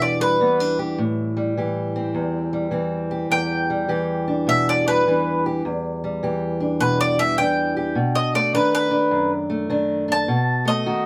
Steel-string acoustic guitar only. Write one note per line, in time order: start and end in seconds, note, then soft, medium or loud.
0.00 0.99 E2 medium
0.00 0.39 B2 medium
0.00 0.40 E3 medium
0.00 0.20 G3 medium
0.00 0.40 D4 medium
0.00 0.79 G4 medium
0.20 1.36 G3 medium
0.41 1.57 E3 medium
0.41 0.60 B3 medium
0.60 0.99 D4 soft
0.79 1.01 G4 medium
0.98 2.15 A2 medium
1.37 2.53 G3 medium
1.57 2.71 E3 medium
1.57 3.11 G4 medium
1.96 2.71 C4 medium
2.15 3.29 E2 medium
2.53 3.70 G3 medium
2.71 3.88 E3 medium
2.71 3.28 C4 medium
3.11 3.89 G4 medium
3.31 5.63 E2 medium
3.70 4.85 G3 medium
3.89 5.05 E3 medium
3.89 5.43 G4 medium
4.28 5.08 D4 medium
4.47 5.05 B2 medium
4.87 6.02 G3 medium
5.07 5.62 E3 medium
5.07 5.68 D4 medium
5.46 5.62 G4 medium
5.65 7.97 E2 medium
6.04 7.17 G3 medium
6.23 7.38 E3 medium
6.23 7.75 G4 medium
6.60 7.40 D4 medium
6.80 7.38 B2 medium
7.18 7.96 G3 medium
7.39 7.94 E3 medium
7.39 8.54 D4 medium
7.77 7.94 G4 medium
7.95 8.54 B2 medium
8.34 9.49 A3 medium
8.54 9.68 D#3 medium
8.54 8.90 D4 medium
8.91 9.69 D4 medium
9.11 10.26 F#2 medium
9.50 10.31 A3 medium
9.70 10.26 D#3 medium
9.70 10.07 D4 medium
10.08 10.26 D4 medium
10.28 10.87 B2 medium
10.65 11.06 A3 medium
10.86 11.06 D#3 medium
10.86 11.06 F#4 medium